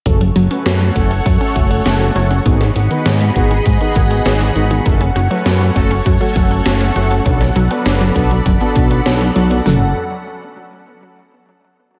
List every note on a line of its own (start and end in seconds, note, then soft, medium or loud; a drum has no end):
0.06 0.31 F#1 loud
0.06 0.12 F#3 medium
0.06 0.22 A3 medium
0.06 0.22 C#4 medium
0.06 0.22 F#4 medium
0.06 0.22 A4 medium
0.06 2.43 A4 medium
0.06 2.43 C#5 medium
0.06 2.43 F#5 medium
0.06 2.44 C#6 medium
0.06 kick loud
0.06 closed hi-hat medium
0.21 0.31 F#3 medium
0.21 closed hi-hat soft
0.36 0.48 F#1 medium
0.36 0.46 F#3 loud
0.36 closed hi-hat medium
0.51 0.92 A3 medium
0.51 0.61 C#4 medium
0.51 0.92 C#4 medium
0.51 0.92 F#4 medium
0.51 0.92 B4 medium
0.51 closed hi-hat soft
0.66 0.91 F#2 medium
0.66 0.80 F#4 medium
0.66 snare loud
0.66 closed hi-hat medium
0.81 0.87 F#3 medium
0.81 closed hi-hat soft
0.96 1.21 F#1 medium
0.96 1.02 F#3 medium
0.96 1.12 A3 medium
0.96 1.12 C#4 medium
0.96 1.12 F#4 medium
0.96 1.12 A4 loud
0.96 kick medium
0.96 closed hi-hat medium
1.11 1.21 F#3 medium
1.11 closed hi-hat soft
1.26 1.38 F#2 medium
1.26 1.36 F#3 loud
1.26 kick loud
1.26 closed hi-hat medium
1.41 1.82 A3 medium
1.41 1.51 C#4 medium
1.41 1.82 C#4 medium
1.41 1.82 F#4 medium
1.41 1.82 A4 loud
1.41 closed hi-hat soft
1.56 1.81 F#1 medium
1.56 1.70 F#4 medium
1.56 kick loud
1.56 closed hi-hat medium
1.71 1.77 F#3 medium
1.71 closed hi-hat soft
1.86 2.11 F#1 loud
1.86 1.92 F#3 medium
1.86 2.11 A3 medium
1.86 2.11 C#4 medium
1.86 2.11 F#4 medium
1.86 2.11 A4 loud
1.86 snare loud
1.86 closed hi-hat medium
2.01 2.11 F#3 medium
2.01 closed hi-hat soft
2.16 2.41 F#1 medium
2.16 2.26 F#3 loud
2.16 2.42 A3 medium
2.16 2.42 C#4 medium
2.16 2.42 F#4 medium
2.16 2.42 A4 medium
2.16 closed hi-hat soft
2.31 2.41 C#4 medium
2.31 closed hi-hat soft
2.46 2.71 G#1 loud
2.46 2.60 B3 medium
2.46 2.62 B3 medium
2.46 2.62 D#4 medium
2.46 2.62 F#4 medium
2.46 2.62 G#4 medium
2.46 4.84 G#4 medium
2.46 4.84 D#5 medium
2.46 9.62 F#5 medium
2.46 4.84 B5 medium
2.46 kick loud
2.46 closed hi-hat medium
2.61 2.67 D#3 medium
2.61 snare soft
2.61 closed hi-hat soft
2.76 2.88 G#1 medium
2.76 2.82 D#3 medium
2.76 closed hi-hat medium
2.91 3.01 D#3 medium
2.91 3.32 B3 medium
2.91 3.32 D#4 medium
2.91 3.32 F#4 medium
2.91 3.32 B4 medium
2.91 closed hi-hat soft
3.06 3.31 G#2 medium
3.06 3.16 D#3 loud
3.06 snare loud
3.06 closed hi-hat medium
3.21 3.31 G#3 medium
3.21 closed hi-hat soft
3.36 3.61 G#1 medium
3.36 3.52 B3 loud
3.36 3.50 B3 medium
3.36 3.52 D#4 medium
3.36 3.52 F#4 medium
3.36 3.52 G#4 loud
3.36 kick medium
3.36 closed hi-hat medium
3.51 3.57 D#3 medium
3.51 closed hi-hat soft
3.66 3.78 G#2 medium
3.66 3.72 D#3 medium
3.66 kick loud
3.66 closed hi-hat medium
3.81 3.91 D#3 medium
3.81 4.22 B3 medium
3.81 4.22 D#4 medium
3.81 4.22 F#4 medium
3.81 4.22 G#4 loud
3.81 closed hi-hat soft
3.96 4.21 G#1 medium
3.96 4.06 D#3 loud
3.96 kick loud
3.96 closed hi-hat medium
4.11 4.21 G#3 medium
4.11 closed hi-hat soft
4.26 4.51 G#1 loud
4.26 4.51 B3 medium
4.26 4.40 B3 medium
4.26 4.51 D#4 medium
4.26 4.51 F#4 medium
4.26 4.51 G#4 loud
4.26 snare loud
4.26 closed hi-hat medium
4.41 4.47 D#3 medium
4.41 closed hi-hat soft
4.56 4.81 G#1 medium
4.56 4.62 D#3 medium
4.56 4.82 B3 medium
4.56 4.82 D#4 medium
4.56 4.82 F#4 medium
4.56 4.82 G#4 medium
4.56 closed hi-hat soft
4.71 4.81 D#3 medium
4.71 closed hi-hat soft
4.86 5.11 F#1 loud
4.86 4.96 F#3 loud
4.86 5.02 A3 medium
4.86 5.02 C#4 medium
4.86 5.02 F#4 medium
4.86 5.02 A4 medium
4.86 9.62 A4 medium
4.86 7.23 C#5 medium
4.86 7.23 C#6 medium
4.86 kick loud
4.86 closed hi-hat medium
5.01 5.11 C#4 medium
5.01 closed hi-hat soft
5.16 5.28 F#1 medium
5.16 5.30 F#4 medium
5.16 closed hi-hat medium
5.31 5.37 F#3 medium
5.31 5.72 A3 medium
5.31 5.72 C#4 medium
5.31 5.72 F#4 medium
5.31 5.72 B4 medium
5.31 closed hi-hat soft
5.46 5.71 F#2 medium
5.46 5.52 F#3 medium
5.46 snare loud
5.46 closed hi-hat medium
5.61 5.71 F#3 medium
5.61 closed hi-hat soft
5.76 6.01 F#1 medium
5.76 5.86 F#3 loud
5.76 5.92 A3 medium
5.76 5.92 C#4 medium
5.76 5.92 F#4 medium
5.76 5.92 A4 loud
5.76 kick medium
5.76 closed hi-hat medium
5.91 6.01 C#4 medium
5.91 closed hi-hat soft
6.06 6.18 F#2 medium
6.06 6.20 F#4 medium
6.06 kick loud
6.06 closed hi-hat medium
6.21 6.27 F#3 medium
6.21 6.62 A3 medium
6.21 6.62 C#4 medium
6.21 6.62 F#4 medium
6.21 6.62 A4 medium
6.21 closed hi-hat soft
6.36 6.61 F#1 medium
6.36 6.42 F#3 medium
6.36 kick loud
6.36 closed hi-hat medium
6.51 6.61 F#3 medium
6.51 closed hi-hat soft
6.66 6.91 F#1 loud
6.66 6.76 F#3 loud
6.66 6.91 A3 medium
6.66 6.91 C#4 medium
6.66 6.91 F#4 medium
6.66 6.91 A4 loud
6.66 snare loud
6.66 closed hi-hat medium
6.81 6.91 C#4 medium
6.81 closed hi-hat soft
6.96 7.21 F#1 medium
6.96 7.22 A3 medium
6.96 7.22 C#4 medium
6.96 7.22 F#4 medium
6.96 7.10 F#4 medium
6.96 7.22 A4 medium
6.96 closed hi-hat soft
7.11 7.17 F#3 medium
7.11 closed hi-hat soft
7.25 7.51 B1 loud
7.25 7.32 F#3 medium
7.25 7.42 B3 medium
7.25 7.42 D4 medium
7.25 7.42 F#4 medium
7.25 7.42 A4 medium
7.25 9.63 D5 medium
7.25 9.63 B5 medium
7.25 kick loud
7.25 closed hi-hat medium
7.41 7.51 F#3 medium
7.41 snare soft
7.41 closed hi-hat soft
7.56 7.68 B1 medium
7.56 7.66 F#3 loud
7.56 closed hi-hat medium
7.71 8.12 B3 medium
7.71 7.81 B3 medium
7.71 8.12 D4 medium
7.71 8.12 F#4 medium
7.71 8.12 B4 medium
7.71 closed hi-hat soft
7.86 8.11 F#1 medium
7.86 8.00 D4 medium
7.86 snare loud
7.86 closed hi-hat medium
8.01 8.07 F#3 medium
8.01 closed hi-hat soft
8.16 8.41 B1 medium
8.16 8.22 F#3 medium
8.16 8.32 B3 loud
8.16 8.32 D4 medium
8.16 8.32 F#4 medium
8.16 8.32 A4 loud
8.16 kick medium
8.16 closed hi-hat medium
8.31 8.41 F#3 medium
8.31 closed hi-hat soft
8.46 8.58 F#1 medium
8.46 8.56 F#3 loud
8.46 kick loud
8.46 closed hi-hat medium
8.61 9.02 B3 medium
8.61 8.71 B3 medium
8.61 9.02 D4 medium
8.61 9.02 F#4 medium
8.61 9.02 A4 loud
8.61 closed hi-hat soft
8.76 9.01 B1 medium
8.76 8.90 D4 medium
8.76 kick loud
8.76 closed hi-hat medium
8.91 8.97 F#3 medium
8.91 closed hi-hat soft
9.06 9.31 B1 medium
9.06 9.12 F#3 medium
9.06 9.31 B3 medium
9.06 9.31 D4 medium
9.06 9.31 F#4 medium
9.06 9.31 A4 loud
9.06 snare loud
9.06 closed hi-hat medium
9.21 9.31 F#3 medium
9.21 closed hi-hat soft
9.36 9.61 B1 medium
9.36 9.46 F#3 loud
9.36 9.62 B3 medium
9.36 9.62 D4 medium
9.36 9.62 F#4 medium
9.36 9.62 A4 medium
9.36 closed hi-hat soft
9.51 9.62 B3 medium
9.51 closed hi-hat soft
9.66 9.94 F#1 loud
9.66 9.94 F#3 medium
9.66 9.88 A3 medium
9.66 9.88 C#4 medium
9.66 9.88 F#4 medium
9.66 9.88 A4 loud
9.66 snare loud
9.66 floor tom loud